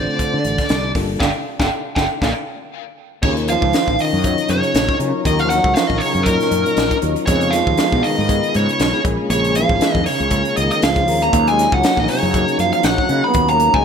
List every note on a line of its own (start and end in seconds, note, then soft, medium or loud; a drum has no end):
0.00 0.92 D3 medium
0.00 0.39 A3 medium
0.00 0.39 C4 medium
0.00 0.39 D4 medium
0.00 0.39 F4 medium
0.00 0.39 C5 medium
0.00 0.91 D5 medium
0.19 muted fretless electric bass stroke soft
0.19 kick medium
0.19 closed hi-hat medium
0.34 0.43 D3 medium
0.44 0.56 A1 medium
0.44 closed hi-hat medium
0.58 kick medium
0.58 snare soft
0.58 closed hi-hat soft
0.69 0.91 C2 medium
0.69 snare medium
0.69 closed hi-hat medium
0.95 1.16 G1 medium
0.95 1.20 G3 medium
0.95 1.20 A#3 medium
0.95 1.20 D4 medium
0.95 1.20 F4 medium
0.95 1.21 A4 medium
0.95 kick medium
0.95 snare soft
0.95 open hi-hat medium
1.20 1.31 G1 medium
1.20 1.29 D3 medium
1.20 1.30 D4 medium
1.20 1.29 F4 medium
1.20 1.29 D5 medium
1.20 1.29 F5 medium
1.20 1.29 G5 medium
1.20 kick medium
1.20 snare medium
1.60 1.68 G1 medium
1.60 1.69 D3 medium
1.60 1.67 D4 medium
1.60 1.67 F4 medium
1.60 1.67 G4 medium
1.60 1.67 D5 medium
1.60 1.67 F5 medium
1.60 1.67 G5 medium
1.60 kick medium
1.60 snare medium
1.96 2.06 G1 medium
1.96 2.04 D3 medium
1.96 2.05 D4 medium
1.96 2.05 F4 medium
1.96 2.05 G4 medium
1.96 2.05 D5 medium
1.96 2.05 F5 medium
1.96 2.05 G5 medium
1.96 kick medium
1.96 snare medium
2.22 2.32 A#1 medium
2.22 2.29 D3 medium
2.22 2.31 A#3 medium
2.22 2.31 D4 medium
2.22 2.31 F4 medium
2.22 2.31 A#4 medium
2.22 2.31 D5 medium
2.22 2.31 F5 medium
2.22 kick medium
2.22 snare medium
3.22 3.56 D#2 loud
3.22 3.36 C#3 medium
3.22 4.18 D#3 medium
3.22 4.18 C#4 medium
3.22 4.18 D#4 medium
3.22 4.18 F4 medium
3.22 7.24 A#4 medium
3.22 4.19 A#4 medium
3.22 3.29 C#5 medium
3.22 9.01 D#5 medium
3.22 7.24 A#5 medium
3.22 7.24 C#6 medium
3.22 kick loud
3.22 crash medium
3.37 closed hi-hat soft
3.48 3.96 F3 medium
3.48 4.01 F5 loud
3.48 closed hi-hat medium
3.62 3.71 C#2 medium
3.62 kick medium
3.73 snare medium
3.73 closed hi-hat medium
3.88 3.97 A#1 medium
3.88 kick medium
3.99 4.46 D#3 medium
3.99 4.50 D#5 medium
3.99 open hi-hat medium
4.13 4.34 F#2 medium
4.24 4.96 F#3 medium
4.24 4.96 C#4 medium
4.24 4.96 D#4 medium
4.24 4.96 F4 medium
4.24 4.97 C#5 medium
4.24 kick medium
4.24 closed hi-hat medium
4.38 closed hi-hat soft
4.49 4.61 F#2 medium
4.49 4.98 C#3 medium
4.49 4.97 C#5 medium
4.49 closed hi-hat medium
4.63 closed hi-hat soft
4.74 4.86 A#1 medium
4.74 snare loud
4.74 closed hi-hat medium
4.89 kick medium
4.99 5.11 C#3 medium
4.99 5.24 F#3 medium
4.99 5.24 C#4 medium
4.99 5.24 D#4 medium
4.99 5.24 F4 medium
4.99 5.25 C#5 medium
4.99 closed hi-hat soft
5.25 5.58 D#2 loud
5.25 5.45 D#3 medium
5.25 6.21 F#3 medium
5.25 6.21 C#4 medium
5.25 6.21 D#4 medium
5.25 6.21 F4 medium
5.25 6.21 A#4 medium
5.25 5.40 D#5 medium
5.25 kick loud
5.25 closed hi-hat medium
5.39 5.49 F5 medium
5.39 closed hi-hat soft
5.44 5.53 F3 medium
5.50 5.74 F#5 medium
5.50 snare soft
5.50 closed hi-hat medium
5.54 5.76 F#3 medium
5.64 5.74 C#2 medium
5.64 kick medium
5.75 5.94 F3 medium
5.75 5.87 F5 medium
5.75 snare loud
5.75 closed hi-hat medium
5.87 5.99 A#1 medium
5.87 6.00 D#5 medium
5.87 kick medium
5.93 6.02 D#3 medium
5.98 6.25 C#5 medium
5.98 open hi-hat medium
6.03 6.25 C#3 medium
6.14 6.36 F#2 medium
6.14 closed hi-hat soft
6.23 6.98 F#3 medium
6.23 6.98 C#4 medium
6.23 6.98 D#4 medium
6.23 6.98 F4 medium
6.23 6.97 A#4 medium
6.23 6.98 A#4 medium
6.23 kick medium
6.23 closed hi-hat medium
6.27 6.99 A#2 medium
6.40 snare soft
6.40 closed hi-hat soft
6.51 6.63 F#2 medium
6.51 closed hi-hat medium
6.66 closed hi-hat soft
6.77 6.89 A#1 medium
6.77 snare loud
6.77 closed hi-hat medium
6.91 kick medium
6.91 closed hi-hat soft
7.02 7.14 D#2 medium
7.02 7.26 F#3 medium
7.02 7.26 C#4 medium
7.02 7.26 D#4 medium
7.02 7.26 F4 medium
7.02 7.26 A#4 medium
7.02 closed hi-hat medium
7.16 closed hi-hat soft
7.26 7.61 F2 loud
7.26 7.52 C#3 medium
7.26 8.23 G#3 medium
7.26 8.23 B3 medium
7.26 8.23 D#4 medium
7.26 8.23 F4 medium
7.26 11.28 G#4 medium
7.26 8.23 G#4 medium
7.26 7.53 C#5 medium
7.26 9.03 F5 medium
7.26 9.03 B5 medium
7.26 kick medium
7.26 closed hi-hat medium
7.41 closed hi-hat soft
7.51 8.01 F3 medium
7.51 8.04 F5 loud
7.51 snare soft
7.51 closed hi-hat medium
7.67 7.77 D#2 medium
7.67 kick medium
7.77 snare loud
7.77 closed hi-hat medium
7.92 8.02 B2 medium
7.92 kick medium
8.03 8.52 D#3 medium
8.03 8.55 D#5 medium
8.03 open hi-hat medium
8.18 8.39 G#2 medium
8.29 9.01 G#3 medium
8.29 9.01 B3 medium
8.29 9.01 D#4 medium
8.29 9.01 F4 medium
8.29 9.01 G#4 medium
8.29 kick medium
8.29 closed hi-hat medium
8.43 closed hi-hat soft
8.54 8.66 G#2 medium
8.54 9.02 C#3 medium
8.54 9.02 C#5 medium
8.54 closed hi-hat soft
8.69 closed hi-hat soft
8.80 8.91 B1 medium
8.80 snare loud
8.80 closed hi-hat medium
9.04 9.17 A#1 medium
9.04 10.00 G#3 medium
9.04 10.00 A#3 medium
9.04 10.00 C#4 medium
9.04 10.00 F4 medium
9.04 10.01 G#4 medium
9.04 13.85 C#5 medium
9.04 11.31 F5 medium
9.04 13.85 A#5 medium
9.04 kick medium
9.04 closed hi-hat soft
9.30 9.63 A#1 loud
9.30 9.55 C#3 medium
9.30 9.56 C#5 medium
9.30 closed hi-hat medium
9.44 closed hi-hat soft
9.55 10.04 F3 medium
9.55 10.03 F5 medium
9.55 closed hi-hat medium
9.69 9.79 G#1 medium
9.69 kick medium
9.81 snare loud
9.81 closed hi-hat medium
9.95 10.04 F2 medium
9.95 kick medium
10.06 10.55 C#3 medium
10.06 10.57 C#5 medium
10.06 open hi-hat medium
10.20 10.41 C#2 medium
10.20 closed hi-hat soft
10.31 11.03 G#3 medium
10.31 11.03 A#3 medium
10.31 11.03 C#4 medium
10.31 11.03 F4 medium
10.31 11.03 G#4 medium
10.31 kick medium
10.31 closed hi-hat medium
10.45 closed hi-hat soft
10.57 10.69 C#2 medium
10.57 10.71 D#5 medium
10.57 closed hi-hat medium
10.61 10.72 D#3 medium
10.71 10.83 D#3 medium
10.71 10.83 D#5 medium
10.71 closed hi-hat soft
10.82 11.05 C#2 medium
10.82 11.20 F3 medium
10.82 11.23 F5 medium
10.82 snare loud
10.82 closed hi-hat medium
10.96 kick medium
10.96 closed hi-hat soft
11.08 11.30 D#2 medium
11.08 11.32 G#3 medium
11.08 11.32 A#3 medium
11.08 11.32 C#4 medium
11.08 11.32 F4 medium
11.08 11.32 A#4 medium
11.08 open hi-hat medium
11.22 11.47 A#3 medium
11.22 11.48 A#5 medium
11.22 closed hi-hat soft
11.33 11.66 D#2 loud
11.33 12.28 F#3 medium
11.33 12.29 A#3 medium
11.33 12.29 C#4 medium
11.33 13.85 D#4 medium
11.33 12.29 D#4 medium
11.33 12.29 F4 medium
11.33 13.85 D#5 medium
11.33 kick loud
11.33 closed hi-hat medium
11.47 11.72 G#3 medium
11.47 11.73 G#5 medium
11.47 closed hi-hat soft
11.59 snare soft
11.59 closed hi-hat medium
11.72 11.82 C#2 medium
11.72 11.97 F#3 medium
11.72 11.97 F#5 medium
11.72 kick medium
11.83 snare loud
11.83 closed hi-hat medium
11.97 12.07 A#1 medium
11.97 12.10 D#3 medium
11.97 12.10 D#5 medium
11.97 kick medium
12.08 12.57 C#3 medium
12.08 12.56 C#5 medium
12.08 open hi-hat medium
12.22 12.44 F#2 medium
12.34 13.06 F#3 medium
12.34 13.06 A#3 medium
12.34 13.06 C#4 medium
12.34 13.07 D#4 medium
12.34 13.06 F#4 medium
12.34 kick medium
12.34 closed hi-hat medium
12.48 closed hi-hat soft
12.58 12.71 F#2 medium
12.58 12.74 F3 medium
12.58 12.72 F5 medium
12.58 closed hi-hat medium
12.73 12.90 F3 medium
12.73 12.84 F5 medium
12.73 closed hi-hat soft
12.83 12.96 A#1 medium
12.83 13.25 F#5 medium
12.83 snare loud
12.83 closed hi-hat medium
12.88 13.26 F#3 medium
12.98 kick medium
13.09 13.21 C#3 medium
13.09 13.33 F#3 medium
13.09 13.32 A#3 medium
13.09 13.33 C#4 medium
13.09 13.34 D#4 medium
13.09 13.34 G#4 medium
13.09 closed hi-hat medium
13.24 13.49 B3 medium
13.24 13.47 B5 medium
13.34 13.68 D#2 loud
13.34 13.85 F#3 medium
13.34 13.85 A#3 medium
13.34 13.85 C#4 medium
13.34 13.85 D#4 medium
13.34 13.85 F#4 medium
13.34 kick loud
13.34 closed hi-hat medium
13.48 13.74 A#3 medium
13.48 13.75 A#5 medium
13.48 closed hi-hat soft
13.60 closed hi-hat medium
13.74 13.84 C#2 medium
13.74 13.85 G#3 medium
13.74 13.85 G#5 medium
13.74 kick medium